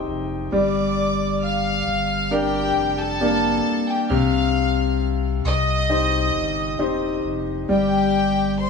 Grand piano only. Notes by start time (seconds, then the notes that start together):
Already playing: C3 D#4 G4 C5 D#5 G5
0.52 G3
2.31 D4 G4 A#4
3.21 A#3 D4 G4
4.10 C3
5.90 D#4 G4 C5
6.79 D#4 G4 C5
7.69 G3